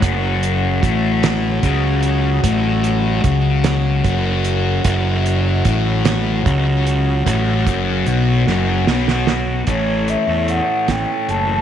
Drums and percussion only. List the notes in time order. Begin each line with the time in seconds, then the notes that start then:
0.02 kick, closed hi-hat
0.43 closed hi-hat
0.83 kick, closed hi-hat
1.23 snare, closed hi-hat
1.63 kick, closed hi-hat
2.03 closed hi-hat
2.44 kick, closed hi-hat
2.84 closed hi-hat
3.24 kick, closed hi-hat
3.64 snare, closed hi-hat
4.04 kick, closed hi-hat
4.44 closed hi-hat
4.84 kick, closed hi-hat
5.26 closed hi-hat
5.65 kick, closed hi-hat
6.05 snare, closed hi-hat
6.46 kick, closed hi-hat
6.87 closed hi-hat
7.26 kick, closed hi-hat
7.67 kick, closed hi-hat
8.06 closed hi-hat
8.47 snare
8.87 snare
9.08 snare
9.27 snare
9.67 kick, closed hi-hat
10.08 closed hi-hat
10.48 closed hi-hat
10.88 kick, snare, closed hi-hat
11.29 closed hi-hat